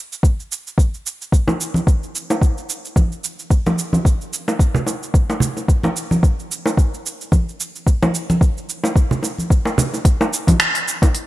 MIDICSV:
0, 0, Header, 1, 2, 480
1, 0, Start_track
1, 0, Tempo, 545455
1, 1168, Time_signature, 4, 2, 24, 8
1, 9916, End_track
2, 0, Start_track
2, 0, Title_t, "Drums"
2, 108, Note_on_c, 9, 82, 30
2, 196, Note_off_c, 9, 82, 0
2, 203, Note_on_c, 9, 36, 102
2, 216, Note_on_c, 9, 82, 42
2, 291, Note_off_c, 9, 36, 0
2, 304, Note_off_c, 9, 82, 0
2, 351, Note_on_c, 9, 82, 19
2, 439, Note_off_c, 9, 82, 0
2, 455, Note_on_c, 9, 82, 74
2, 543, Note_off_c, 9, 82, 0
2, 592, Note_on_c, 9, 82, 32
2, 680, Note_off_c, 9, 82, 0
2, 684, Note_on_c, 9, 36, 103
2, 697, Note_on_c, 9, 82, 37
2, 772, Note_off_c, 9, 36, 0
2, 785, Note_off_c, 9, 82, 0
2, 830, Note_on_c, 9, 82, 20
2, 918, Note_off_c, 9, 82, 0
2, 935, Note_on_c, 9, 82, 76
2, 1023, Note_off_c, 9, 82, 0
2, 1071, Note_on_c, 9, 82, 29
2, 1159, Note_off_c, 9, 82, 0
2, 1165, Note_on_c, 9, 36, 95
2, 1175, Note_on_c, 9, 82, 38
2, 1253, Note_off_c, 9, 36, 0
2, 1263, Note_off_c, 9, 82, 0
2, 1298, Note_on_c, 9, 60, 62
2, 1302, Note_on_c, 9, 63, 55
2, 1309, Note_on_c, 9, 82, 19
2, 1386, Note_off_c, 9, 60, 0
2, 1390, Note_off_c, 9, 63, 0
2, 1397, Note_off_c, 9, 82, 0
2, 1414, Note_on_c, 9, 82, 66
2, 1502, Note_off_c, 9, 82, 0
2, 1534, Note_on_c, 9, 63, 53
2, 1548, Note_on_c, 9, 82, 26
2, 1622, Note_off_c, 9, 63, 0
2, 1636, Note_off_c, 9, 82, 0
2, 1646, Note_on_c, 9, 36, 102
2, 1656, Note_on_c, 9, 82, 42
2, 1734, Note_off_c, 9, 36, 0
2, 1744, Note_off_c, 9, 82, 0
2, 1790, Note_on_c, 9, 82, 19
2, 1878, Note_off_c, 9, 82, 0
2, 1894, Note_on_c, 9, 82, 61
2, 1982, Note_off_c, 9, 82, 0
2, 2026, Note_on_c, 9, 60, 56
2, 2028, Note_on_c, 9, 82, 30
2, 2114, Note_off_c, 9, 60, 0
2, 2116, Note_off_c, 9, 82, 0
2, 2125, Note_on_c, 9, 36, 93
2, 2135, Note_on_c, 9, 82, 39
2, 2213, Note_off_c, 9, 36, 0
2, 2223, Note_off_c, 9, 82, 0
2, 2268, Note_on_c, 9, 82, 20
2, 2356, Note_off_c, 9, 82, 0
2, 2372, Note_on_c, 9, 82, 70
2, 2460, Note_off_c, 9, 82, 0
2, 2508, Note_on_c, 9, 82, 30
2, 2596, Note_off_c, 9, 82, 0
2, 2605, Note_on_c, 9, 36, 101
2, 2611, Note_on_c, 9, 63, 48
2, 2613, Note_on_c, 9, 82, 40
2, 2693, Note_off_c, 9, 36, 0
2, 2699, Note_off_c, 9, 63, 0
2, 2701, Note_off_c, 9, 82, 0
2, 2747, Note_on_c, 9, 82, 20
2, 2835, Note_off_c, 9, 82, 0
2, 2852, Note_on_c, 9, 82, 74
2, 2940, Note_off_c, 9, 82, 0
2, 2986, Note_on_c, 9, 82, 29
2, 3074, Note_off_c, 9, 82, 0
2, 3084, Note_on_c, 9, 36, 89
2, 3088, Note_on_c, 9, 82, 35
2, 3172, Note_off_c, 9, 36, 0
2, 3176, Note_off_c, 9, 82, 0
2, 3225, Note_on_c, 9, 60, 55
2, 3225, Note_on_c, 9, 63, 58
2, 3225, Note_on_c, 9, 82, 17
2, 3313, Note_off_c, 9, 60, 0
2, 3313, Note_off_c, 9, 63, 0
2, 3313, Note_off_c, 9, 82, 0
2, 3331, Note_on_c, 9, 82, 65
2, 3419, Note_off_c, 9, 82, 0
2, 3457, Note_on_c, 9, 63, 57
2, 3468, Note_on_c, 9, 82, 26
2, 3545, Note_off_c, 9, 63, 0
2, 3556, Note_off_c, 9, 82, 0
2, 3565, Note_on_c, 9, 36, 96
2, 3575, Note_on_c, 9, 82, 39
2, 3653, Note_off_c, 9, 36, 0
2, 3663, Note_off_c, 9, 82, 0
2, 3708, Note_on_c, 9, 82, 18
2, 3796, Note_off_c, 9, 82, 0
2, 3812, Note_on_c, 9, 82, 61
2, 3900, Note_off_c, 9, 82, 0
2, 3942, Note_on_c, 9, 60, 55
2, 3947, Note_on_c, 9, 82, 27
2, 4030, Note_off_c, 9, 60, 0
2, 4035, Note_off_c, 9, 82, 0
2, 4043, Note_on_c, 9, 36, 94
2, 4050, Note_on_c, 9, 82, 38
2, 4131, Note_off_c, 9, 36, 0
2, 4138, Note_off_c, 9, 82, 0
2, 4176, Note_on_c, 9, 64, 76
2, 4184, Note_on_c, 9, 82, 19
2, 4264, Note_off_c, 9, 64, 0
2, 4272, Note_off_c, 9, 82, 0
2, 4281, Note_on_c, 9, 60, 44
2, 4289, Note_on_c, 9, 82, 65
2, 4369, Note_off_c, 9, 60, 0
2, 4377, Note_off_c, 9, 82, 0
2, 4428, Note_on_c, 9, 82, 30
2, 4516, Note_off_c, 9, 82, 0
2, 4523, Note_on_c, 9, 36, 101
2, 4531, Note_on_c, 9, 82, 36
2, 4611, Note_off_c, 9, 36, 0
2, 4619, Note_off_c, 9, 82, 0
2, 4661, Note_on_c, 9, 60, 60
2, 4665, Note_on_c, 9, 82, 19
2, 4749, Note_off_c, 9, 60, 0
2, 4753, Note_off_c, 9, 82, 0
2, 4755, Note_on_c, 9, 64, 76
2, 4768, Note_on_c, 9, 82, 74
2, 4843, Note_off_c, 9, 64, 0
2, 4856, Note_off_c, 9, 82, 0
2, 4899, Note_on_c, 9, 60, 30
2, 4905, Note_on_c, 9, 82, 27
2, 4987, Note_off_c, 9, 60, 0
2, 4993, Note_off_c, 9, 82, 0
2, 5002, Note_on_c, 9, 36, 89
2, 5010, Note_on_c, 9, 82, 36
2, 5090, Note_off_c, 9, 36, 0
2, 5098, Note_off_c, 9, 82, 0
2, 5135, Note_on_c, 9, 63, 52
2, 5140, Note_on_c, 9, 60, 63
2, 5144, Note_on_c, 9, 82, 17
2, 5223, Note_off_c, 9, 63, 0
2, 5228, Note_off_c, 9, 60, 0
2, 5232, Note_off_c, 9, 82, 0
2, 5250, Note_on_c, 9, 82, 67
2, 5338, Note_off_c, 9, 82, 0
2, 5377, Note_on_c, 9, 63, 56
2, 5386, Note_on_c, 9, 82, 26
2, 5465, Note_off_c, 9, 63, 0
2, 5474, Note_off_c, 9, 82, 0
2, 5482, Note_on_c, 9, 36, 96
2, 5493, Note_on_c, 9, 82, 37
2, 5570, Note_off_c, 9, 36, 0
2, 5581, Note_off_c, 9, 82, 0
2, 5628, Note_on_c, 9, 82, 19
2, 5716, Note_off_c, 9, 82, 0
2, 5733, Note_on_c, 9, 82, 61
2, 5821, Note_off_c, 9, 82, 0
2, 5857, Note_on_c, 9, 60, 55
2, 5869, Note_on_c, 9, 82, 26
2, 5945, Note_off_c, 9, 60, 0
2, 5957, Note_off_c, 9, 82, 0
2, 5961, Note_on_c, 9, 36, 97
2, 5974, Note_on_c, 9, 82, 37
2, 6049, Note_off_c, 9, 36, 0
2, 6062, Note_off_c, 9, 82, 0
2, 6108, Note_on_c, 9, 82, 19
2, 6196, Note_off_c, 9, 82, 0
2, 6213, Note_on_c, 9, 82, 68
2, 6301, Note_off_c, 9, 82, 0
2, 6347, Note_on_c, 9, 82, 30
2, 6435, Note_off_c, 9, 82, 0
2, 6441, Note_on_c, 9, 63, 50
2, 6442, Note_on_c, 9, 36, 96
2, 6450, Note_on_c, 9, 82, 38
2, 6529, Note_off_c, 9, 63, 0
2, 6530, Note_off_c, 9, 36, 0
2, 6538, Note_off_c, 9, 82, 0
2, 6590, Note_on_c, 9, 82, 18
2, 6678, Note_off_c, 9, 82, 0
2, 6691, Note_on_c, 9, 82, 71
2, 6779, Note_off_c, 9, 82, 0
2, 6827, Note_on_c, 9, 82, 27
2, 6915, Note_off_c, 9, 82, 0
2, 6922, Note_on_c, 9, 36, 82
2, 6930, Note_on_c, 9, 82, 37
2, 7010, Note_off_c, 9, 36, 0
2, 7018, Note_off_c, 9, 82, 0
2, 7062, Note_on_c, 9, 60, 63
2, 7064, Note_on_c, 9, 63, 68
2, 7066, Note_on_c, 9, 82, 18
2, 7150, Note_off_c, 9, 60, 0
2, 7152, Note_off_c, 9, 63, 0
2, 7154, Note_off_c, 9, 82, 0
2, 7169, Note_on_c, 9, 82, 69
2, 7257, Note_off_c, 9, 82, 0
2, 7302, Note_on_c, 9, 63, 62
2, 7307, Note_on_c, 9, 82, 27
2, 7390, Note_off_c, 9, 63, 0
2, 7395, Note_off_c, 9, 82, 0
2, 7401, Note_on_c, 9, 36, 98
2, 7412, Note_on_c, 9, 82, 39
2, 7489, Note_off_c, 9, 36, 0
2, 7500, Note_off_c, 9, 82, 0
2, 7547, Note_on_c, 9, 82, 17
2, 7635, Note_off_c, 9, 82, 0
2, 7652, Note_on_c, 9, 82, 64
2, 7740, Note_off_c, 9, 82, 0
2, 7775, Note_on_c, 9, 60, 60
2, 7786, Note_on_c, 9, 82, 28
2, 7863, Note_off_c, 9, 60, 0
2, 7874, Note_off_c, 9, 82, 0
2, 7881, Note_on_c, 9, 36, 95
2, 7891, Note_on_c, 9, 82, 37
2, 7969, Note_off_c, 9, 36, 0
2, 7979, Note_off_c, 9, 82, 0
2, 8016, Note_on_c, 9, 64, 73
2, 8028, Note_on_c, 9, 82, 20
2, 8104, Note_off_c, 9, 64, 0
2, 8116, Note_off_c, 9, 82, 0
2, 8119, Note_on_c, 9, 60, 44
2, 8131, Note_on_c, 9, 82, 68
2, 8207, Note_off_c, 9, 60, 0
2, 8219, Note_off_c, 9, 82, 0
2, 8258, Note_on_c, 9, 63, 30
2, 8269, Note_on_c, 9, 82, 32
2, 8346, Note_off_c, 9, 63, 0
2, 8357, Note_off_c, 9, 82, 0
2, 8363, Note_on_c, 9, 36, 99
2, 8374, Note_on_c, 9, 82, 38
2, 8451, Note_off_c, 9, 36, 0
2, 8462, Note_off_c, 9, 82, 0
2, 8495, Note_on_c, 9, 60, 59
2, 8508, Note_on_c, 9, 82, 21
2, 8583, Note_off_c, 9, 60, 0
2, 8596, Note_off_c, 9, 82, 0
2, 8605, Note_on_c, 9, 64, 85
2, 8614, Note_on_c, 9, 82, 73
2, 8693, Note_off_c, 9, 64, 0
2, 8702, Note_off_c, 9, 82, 0
2, 8743, Note_on_c, 9, 60, 34
2, 8747, Note_on_c, 9, 82, 30
2, 8831, Note_off_c, 9, 60, 0
2, 8835, Note_off_c, 9, 82, 0
2, 8843, Note_on_c, 9, 36, 111
2, 8845, Note_on_c, 9, 46, 58
2, 8854, Note_on_c, 9, 82, 45
2, 8931, Note_off_c, 9, 36, 0
2, 8933, Note_off_c, 9, 46, 0
2, 8942, Note_off_c, 9, 82, 0
2, 8983, Note_on_c, 9, 60, 72
2, 8990, Note_on_c, 9, 82, 22
2, 9071, Note_off_c, 9, 60, 0
2, 9078, Note_off_c, 9, 82, 0
2, 9094, Note_on_c, 9, 82, 77
2, 9182, Note_off_c, 9, 82, 0
2, 9217, Note_on_c, 9, 36, 65
2, 9223, Note_on_c, 9, 46, 45
2, 9226, Note_on_c, 9, 63, 78
2, 9231, Note_on_c, 9, 82, 32
2, 9305, Note_off_c, 9, 36, 0
2, 9311, Note_off_c, 9, 46, 0
2, 9314, Note_off_c, 9, 63, 0
2, 9319, Note_off_c, 9, 82, 0
2, 9326, Note_on_c, 9, 26, 83
2, 9326, Note_on_c, 9, 46, 57
2, 9334, Note_on_c, 9, 82, 47
2, 9414, Note_off_c, 9, 26, 0
2, 9414, Note_off_c, 9, 46, 0
2, 9422, Note_off_c, 9, 82, 0
2, 9461, Note_on_c, 9, 46, 55
2, 9470, Note_on_c, 9, 82, 22
2, 9549, Note_off_c, 9, 46, 0
2, 9558, Note_off_c, 9, 82, 0
2, 9575, Note_on_c, 9, 82, 75
2, 9663, Note_off_c, 9, 82, 0
2, 9698, Note_on_c, 9, 36, 107
2, 9703, Note_on_c, 9, 60, 64
2, 9704, Note_on_c, 9, 46, 46
2, 9713, Note_on_c, 9, 82, 32
2, 9786, Note_off_c, 9, 36, 0
2, 9791, Note_off_c, 9, 60, 0
2, 9792, Note_off_c, 9, 46, 0
2, 9801, Note_off_c, 9, 82, 0
2, 9808, Note_on_c, 9, 46, 64
2, 9817, Note_on_c, 9, 82, 46
2, 9896, Note_off_c, 9, 46, 0
2, 9905, Note_off_c, 9, 82, 0
2, 9916, End_track
0, 0, End_of_file